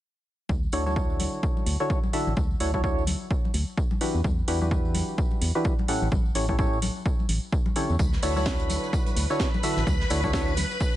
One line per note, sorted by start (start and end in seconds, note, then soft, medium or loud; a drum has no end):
0.49 0.68 D2 medium
0.49 kick loud
0.49 tambourine medium
0.49 high conga medium
0.63 tambourine soft
0.72 1.28 D2 medium
0.72 0.84 D3 medium
0.72 0.84 D4 medium
0.72 0.84 E4 medium
0.72 0.84 F#4 medium
0.72 0.84 A4 medium
0.72 0.84 C#5 loud
0.72 open hi-hat loud
0.72 tambourine medium
0.86 0.95 D3 medium
0.86 0.95 D4 medium
0.86 0.95 E4 medium
0.86 0.95 F#4 medium
0.86 0.95 A4 medium
0.86 0.95 C#5 medium
0.86 tambourine soft
0.86 high conga medium
0.96 1.77 D3 medium
0.96 1.77 D4 medium
0.96 1.77 E4 medium
0.96 1.77 F#4 medium
0.96 1.77 A4 medium
0.96 1.77 C#5 medium
0.96 kick loud
0.96 tambourine soft
1.10 tambourine soft
1.20 open hi-hat loud
1.20 tambourine medium
1.20 high conga medium
1.33 tambourine soft
1.43 kick loud
1.43 tambourine soft
1.57 tambourine soft
1.57 high conga medium
1.66 1.77 D2 loud
1.66 open hi-hat loud
1.66 tambourine medium
1.80 1.99 D3 medium
1.80 1.99 D4 medium
1.80 1.99 E4 medium
1.80 1.99 F#4 medium
1.80 1.99 A4 medium
1.80 1.99 C#5 loud
1.80 tambourine soft
1.90 kick loud
1.90 tambourine soft
2.04 tambourine soft
2.04 high conga medium
2.13 2.33 D3 medium
2.13 2.33 D4 medium
2.13 2.33 E4 medium
2.13 2.33 F#4 medium
2.13 2.33 A4 medium
2.13 2.33 E5 loud
2.13 open hi-hat loud
2.13 tambourine medium
2.27 2.34 A1 medium
2.27 tambourine soft
2.36 2.55 D2 loud
2.36 kick loud
2.36 tambourine medium
2.36 high conga medium
2.51 tambourine soft
2.60 3.15 D2 medium
2.60 2.71 D3 medium
2.60 2.71 D4 medium
2.60 2.71 E4 medium
2.60 2.71 F#4 medium
2.60 2.71 A4 medium
2.60 2.71 C#5 medium
2.60 open hi-hat loud
2.60 tambourine medium
2.74 2.81 D3 medium
2.74 2.81 D4 medium
2.74 2.81 E4 medium
2.74 2.81 F#4 medium
2.74 2.81 A4 medium
2.74 2.81 C#5 loud
2.74 kick medium
2.74 tambourine soft
2.74 high conga medium
2.84 3.04 D3 medium
2.84 3.04 D4 medium
2.84 3.04 E4 medium
2.84 3.04 F#4 medium
2.84 3.04 A4 medium
2.84 3.04 C#5 medium
2.84 kick loud
2.84 tambourine soft
2.98 tambourine soft
3.07 open hi-hat loud
3.07 tambourine medium
3.07 high conga medium
3.21 tambourine soft
3.31 kick loud
3.31 tambourine soft
3.45 tambourine soft
3.45 high conga medium
3.54 3.64 D2 loud
3.54 open hi-hat loud
3.54 tambourine medium
3.67 tambourine soft
3.77 kick loud
3.77 tambourine medium
3.91 tambourine soft
3.91 high conga medium
4.01 4.21 E3 medium
4.01 4.21 D4 medium
4.01 4.21 E4 medium
4.01 4.21 F#4 medium
4.01 4.21 G4 medium
4.01 4.21 B4 medium
4.01 open hi-hat loud
4.01 tambourine medium
4.15 4.22 E2 medium
4.15 tambourine soft
4.24 4.43 E2 loud
4.24 kick loud
4.24 tambourine medium
4.24 high conga medium
4.39 tambourine soft
4.48 5.03 E2 medium
4.48 4.59 E3 medium
4.48 4.59 D4 medium
4.48 4.59 E4 medium
4.48 4.59 F#4 medium
4.48 4.59 G4 medium
4.48 4.59 B4 loud
4.48 open hi-hat loud
4.48 tambourine medium
4.61 4.70 E3 medium
4.61 4.70 D4 medium
4.61 4.70 E4 medium
4.61 4.70 F#4 medium
4.61 4.70 G4 medium
4.61 4.70 B4 medium
4.61 tambourine soft
4.61 high conga medium
4.71 5.52 D4 medium
4.71 5.52 E4 medium
4.71 5.52 F#4 medium
4.71 5.52 G4 medium
4.71 5.52 B4 medium
4.71 kick loud
4.71 tambourine medium
4.85 tambourine soft
4.95 open hi-hat loud
4.95 tambourine medium
4.95 high conga medium
5.08 tambourine soft
5.18 kick loud
5.18 tambourine soft
5.31 tambourine soft
5.31 high conga medium
5.41 5.52 E2 loud
5.41 open hi-hat loud
5.41 tambourine loud
5.55 5.74 E3 medium
5.55 5.74 D4 medium
5.55 5.74 E4 medium
5.55 5.74 F#4 medium
5.55 5.74 G4 medium
5.55 5.74 B4 loud
5.55 tambourine soft
5.64 kick loud
5.64 tambourine medium
5.79 tambourine soft
5.79 high conga medium
5.88 6.08 A2 medium
5.88 6.08 C#4 medium
5.88 6.08 E4 medium
5.88 6.08 G4 medium
5.88 6.08 A4 medium
5.88 6.08 F#5 medium
5.88 open hi-hat loud
5.88 tambourine medium
6.02 6.09 A1 medium
6.02 tambourine soft
6.12 6.30 A1 loud
6.12 kick loud
6.12 tambourine medium
6.12 high conga medium
6.26 tambourine soft
6.35 6.90 A1 medium
6.35 6.46 A2 medium
6.35 6.46 C#4 medium
6.35 6.46 E4 medium
6.35 6.46 G4 medium
6.35 6.46 A4 medium
6.35 6.46 C#5 medium
6.35 open hi-hat loud
6.35 tambourine loud
6.48 6.56 A2 medium
6.48 6.56 C#4 medium
6.48 6.56 E4 medium
6.48 6.56 G4 medium
6.48 6.56 A4 medium
6.48 6.56 C#5 loud
6.48 kick medium
6.48 tambourine soft
6.48 high conga medium
6.59 6.79 A2 medium
6.59 6.79 C#4 medium
6.59 6.79 E4 medium
6.59 6.79 G4 medium
6.59 6.79 A4 medium
6.59 6.79 C#5 loud
6.59 kick loud
6.59 tambourine medium
6.73 tambourine soft
6.82 open hi-hat loud
6.82 tambourine medium
6.82 high conga medium
6.96 tambourine soft
7.06 kick loud
7.06 tambourine medium
7.19 tambourine soft
7.19 high conga medium
7.29 7.39 A1 loud
7.29 open hi-hat loud
7.29 tambourine medium
7.43 tambourine soft
7.52 kick loud
7.52 tambourine soft
7.66 tambourine soft
7.66 high conga medium
7.76 7.96 D3 medium
7.76 7.96 C#4 medium
7.76 7.96 E4 medium
7.76 7.96 G4 medium
7.76 7.96 A4 medium
7.76 7.96 C#5 medium
7.76 open hi-hat loud
7.76 tambourine medium
7.89 7.97 E2 medium
7.89 tambourine soft
7.99 10.96 B4 medium
7.99 10.96 B5 medium
7.99 kick loud
7.99 tambourine medium
7.99 tambourine soft
7.99 high conga medium
8.13 snare soft
8.13 tambourine soft
8.22 8.78 D2 medium
8.22 8.34 D3 medium
8.22 8.34 D4 medium
8.22 8.34 E4 medium
8.22 8.34 F#4 medium
8.22 8.34 A4 medium
8.22 8.34 C#5 loud
8.22 open hi-hat medium
8.22 open hi-hat loud
8.22 tambourine medium
8.36 8.45 D3 medium
8.36 8.45 D4 medium
8.36 8.45 E4 medium
8.36 8.45 F#4 medium
8.36 8.45 A4 medium
8.36 8.45 C#5 medium
8.36 tambourine soft
8.36 high conga medium
8.46 9.27 D3 medium
8.46 9.27 D4 medium
8.46 9.27 E4 medium
8.46 9.27 F#4 medium
8.46 9.27 C#5 medium
8.46 kick loud
8.46 snare loud
8.46 tambourine medium
8.46 tambourine soft
8.60 closed hi-hat soft
8.60 tambourine soft
8.69 open hi-hat loud
8.69 tambourine medium
8.69 high conga medium
8.83 tambourine soft
8.93 kick loud
8.93 tambourine medium
8.93 tambourine soft
9.06 closed hi-hat soft
9.06 tambourine soft
9.06 high conga medium
9.17 9.27 D2 loud
9.17 open hi-hat loud
9.17 tambourine medium
9.30 9.49 D3 medium
9.30 9.49 D4 medium
9.30 9.49 E4 medium
9.30 9.49 F#4 medium
9.30 9.49 A4 medium
9.30 9.49 C#5 loud
9.30 tambourine soft
9.39 kick loud
9.39 snare loud
9.39 tambourine medium
9.39 tambourine soft
9.54 tambourine soft
9.54 high conga medium
9.63 9.83 D3 medium
9.63 9.83 D4 medium
9.63 9.83 E4 medium
9.63 9.83 F#4 medium
9.63 9.83 A4 medium
9.63 9.83 E5 loud
9.63 open hi-hat loud
9.63 tambourine medium
9.65 tambourine medium
9.77 9.84 A1 medium
9.77 snare soft
9.77 tambourine soft
9.87 10.05 D2 medium
9.87 kick loud
9.87 tambourine medium
9.87 tambourine soft
9.87 high conga medium
10.00 snare soft
10.00 tambourine soft
10.10 10.65 D2 medium
10.10 10.21 D3 medium
10.10 10.21 D4 medium
10.10 10.21 E4 medium
10.10 10.21 F#4 medium
10.10 10.21 A4 medium
10.10 10.21 C#5 medium
10.10 open hi-hat loud
10.10 tambourine medium
10.23 10.31 D3 medium
10.23 10.31 D4 medium
10.23 10.31 E4 medium
10.23 10.31 F#4 medium
10.23 10.31 A4 medium
10.23 10.31 C#5 loud
10.23 kick medium
10.23 tambourine soft
10.23 high conga medium
10.25 tambourine soft
10.33 10.54 D3 medium
10.33 10.54 D4 medium
10.33 10.54 E4 medium
10.33 10.54 F#4 medium
10.33 10.54 A4 medium
10.33 10.54 C#5 loud
10.33 kick loud
10.33 snare loud
10.33 tambourine soft
10.33 tambourine medium
10.48 tambourine soft
10.57 snare soft
10.57 open hi-hat loud
10.57 tambourine medium
10.57 high conga medium
10.71 tambourine soft
10.80 kick loud
10.80 tambourine medium
10.80 tambourine soft